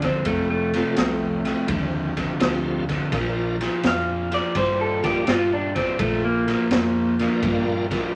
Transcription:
0.02 overdriven electric guitar F2 D3, clean electric guitar C4, kick, snare, ride
0.25 fingered electric bass F1, overdriven electric guitar F2 C3, clean electric guitar A3, kick, ride
0.50 clean electric guitar A3
0.73 overdriven electric guitar F2 C3, tonewheel organ F3 A3 C4 F4 A4, snare, ride
0.96 fingered electric bass C2, overdriven electric guitar F2 C3, snare, ride
1.45 overdriven electric guitar F2 C3, snare, ride
1.68 fingered electric bass D#2, overdriven electric guitar F2 D3, kick, ride
2.17 overdriven electric guitar F2 D3, kick, snare, ride
2.40 fingered electric bass D2, overdriven electric guitar F2 D3, tonewheel organ F3 A3 C4 F4 G4, snare, ride
2.89 overdriven electric guitar F2 D3, kick, snare, ride
3.12 fingered electric bass A#1, overdriven electric guitar A#2 F3, tonewheel organ F3 A#3 D4 F4 A#4, kick, snare, ride
3.61 overdriven electric guitar A#2 F3, snare, ride
3.83 fingered electric bass F2, overdriven electric guitar A#2 F3, clean electric guitar F5, snare, ride
4.32 overdriven electric guitar A#2 F3, clean electric guitar D5, snare, ride
4.55 fingered electric bass G2, overdriven electric guitar A#2 G3, clean electric guitar C5, kick, snare, ride
4.81 clean electric guitar A4
5.02 overdriven electric guitar A#2 G3, tonewheel organ F3 A#3 D4 F4 A#4, clean electric guitar G4, kick, snare, ride
5.27 fingered electric bass G2, overdriven electric guitar A#2 G3, clean electric guitar F4, snare, ride
5.53 clean electric guitar D4
5.75 overdriven electric guitar A#2 G3, clean electric guitar C4, kick, snare, ride
5.99 fingered electric bass A#1, overdriven electric guitar A#2 F3, clean electric guitar A3, kick, ride
6.25 clean electric guitar A#3
6.47 overdriven electric guitar A#2 F3, snare, ride
6.70 fingered electric bass F2, overdriven electric guitar A#2 F3, snare, ride
7.18 overdriven electric guitar A#2 F3, tonewheel organ F3 A#3 D4 F4 A#4, snare, ride
7.42 fingered electric bass G2, overdriven electric guitar A#2 G3, kick, ride
7.90 overdriven electric guitar A#2 G3, tonewheel organ F3 A#3 D4 F4 A#4, kick, snare, ride

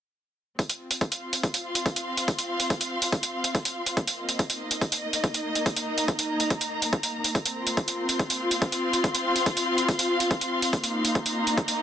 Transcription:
0.59 string section C4, kick, closed hi-hat
0.68 string section F4, closed hi-hat
0.91 closed hi-hat
1.01 kick, closed hi-hat
1.06 string section F5 C6
1.12 closed hi-hat
1.33 closed hi-hat
1.43 kick, closed hi-hat
1.54 closed hi-hat
1.75 closed hi-hat
1.86 kick, closed hi-hat
1.96 closed hi-hat
2.17 closed hi-hat
2.28 kick, closed hi-hat
2.39 closed hi-hat
2.60 closed hi-hat
2.70 kick, closed hi-hat
2.81 closed hi-hat
3.02 closed hi-hat
3.12 kick, closed hi-hat
3.23 closed hi-hat
3.44 closed hi-hat
3.55 kick, closed hi-hat
3.65 closed hi-hat
3.86 closed hi-hat
3.97 string section A#3, kick, closed hi-hat
4.08 closed hi-hat
4.18 string section D#5
4.29 closed hi-hat
4.38 string section D#4, kick, closed hi-hat
4.50 closed hi-hat
4.71 closed hi-hat
4.81 kick, closed hi-hat
4.92 closed hi-hat
5.13 closed hi-hat
5.24 kick, closed hi-hat
5.34 closed hi-hat
5.42 string section A#5
5.55 closed hi-hat
5.66 kick, closed hi-hat
5.76 closed hi-hat
5.98 closed hi-hat
6.08 kick, closed hi-hat
6.19 closed hi-hat
6.40 closed hi-hat
6.50 kick, closed hi-hat
6.61 closed hi-hat
6.82 closed hi-hat
6.93 kick, closed hi-hat
7.03 closed hi-hat
7.24 closed hi-hat
7.35 string section C4, kick, closed hi-hat
7.46 closed hi-hat
7.58 string section F4 C6
7.67 closed hi-hat
7.77 kick, closed hi-hat
7.88 closed hi-hat
8.08 string section F5, closed hi-hat
8.19 kick, closed hi-hat
8.30 closed hi-hat
8.51 closed hi-hat
8.62 kick, closed hi-hat
8.72 closed hi-hat
8.93 closed hi-hat
9.04 kick, closed hi-hat
9.15 closed hi-hat
9.36 closed hi-hat
9.46 kick, closed hi-hat
9.57 closed hi-hat
9.78 closed hi-hat
9.88 kick, closed hi-hat
9.99 closed hi-hat
10.20 closed hi-hat
10.31 kick, closed hi-hat
10.41 closed hi-hat
10.62 closed hi-hat
10.73 string section A#3, kick, closed hi-hat
10.80 string section D#4, closed hi-hat
11.05 closed hi-hat
11.15 kick, closed hi-hat
11.23 string section A#5, closed hi-hat
11.47 closed hi-hat
11.57 string section D#5, kick, closed hi-hat
11.68 closed hi-hat

